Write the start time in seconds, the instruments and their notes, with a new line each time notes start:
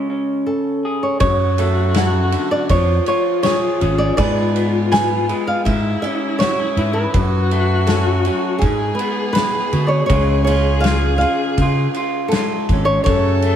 Already playing: clean electric guitar C#3 G#3, nylon-string guitar F4
0.10 clean electric guitar C#4
0.46 nylon-string guitar A4
0.85 clean electric guitar G#4
1.03 nylon-string guitar C#5
1.20 fingered electric bass F#2, clean electric guitar F#2, viola F#4, nylon-string guitar C#5, kick, ride
1.58 clean electric guitar A3, steel-string acoustic guitar A4, ride
1.94 clean electric guitar C#3, nylon-string guitar F#5, snare, ride
2.32 clean electric guitar D3, ride
2.51 nylon-string guitar D5
2.69 fingered electric bass F2, clean electric guitar F3, viola F4, nylon-string guitar C#5, kick, ride
3.06 clean electric guitar F4, nylon-string guitar C#5, ride
3.43 clean electric guitar G#4, nylon-string guitar C#5, snare, ride
3.81 fingered electric bass G#1, clean electric guitar C#4 G#4, ride
3.98 nylon-string guitar D5
4.17 fingered electric bass G#2, clean electric guitar G#2 G#3 B3 B4, viola F4, steel-string acoustic guitar G#4, nylon-string guitar D5, kick, ride
4.56 clean electric guitar B3, ride
4.92 clean electric guitar B4, nylon-string guitar G#5, snare, ride
5.29 clean electric guitar G#3 B4, ride
5.47 nylon-string guitar F5
5.64 fingered electric bass G#2, clean electric guitar G#2, viola E4, nylon-string guitar E5, kick, ride
6.02 clean electric guitar C#4, nylon-string guitar E5, ride
6.39 clean electric guitar F#4, nylon-string guitar C#5, snare, ride
6.60 clean electric guitar G#4
6.77 fingered electric bass G#2, clean electric guitar E3 E4, ride
6.93 nylon-string guitar B4
7.13 fingered electric bass F#2, clean electric guitar F#2, viola F#4, kick, ride
7.51 clean electric guitar A3, ride
7.87 clean electric guitar C#4, nylon-string guitar A4, snare, ride
8.25 clean electric guitar F#3 C#4, ride
8.58 fingered electric bass G#2, clean electric guitar G#2, nylon-string guitar G#4, viola G#4, kick, ride
8.95 nylon-string guitar B4
8.99 clean electric guitar B3, ride
9.33 nylon-string guitar B4, snare, ride
9.38 clean electric guitar A2
9.72 clean electric guitar B2, fingered electric bass D3, ride
9.87 nylon-string guitar C#5 D5
10.06 fingered electric bass C#2, clean electric guitar C#3, viola G#4, nylon-string guitar C#5, kick, ride
10.11 clean electric guitar G#3 C#4 F4
10.44 steel-string acoustic guitar F4, nylon-string guitar C#5, ride
10.49 clean electric guitar C#4
10.80 nylon-string guitar F5, ride
10.85 clean electric guitar F4, snare
11.18 clean electric guitar F4, nylon-string guitar F5, ride
11.58 fingered electric bass C#3, kick, ride
11.62 clean electric guitar F4
11.94 clean electric guitar F4, ride
12.28 nylon-string guitar A4, ride
12.32 clean electric guitar G#2 F4, snare
12.69 fingered electric bass G#1, clean electric guitar C#4, kick, ride
12.85 nylon-string guitar C#5
13.04 fingered electric bass F#2, harmonium C#3 F#3 A3 C#4 A4, viola A4, nylon-string guitar C#5, kick, ride
13.08 clean electric guitar F#2
13.42 clean electric guitar A3, ride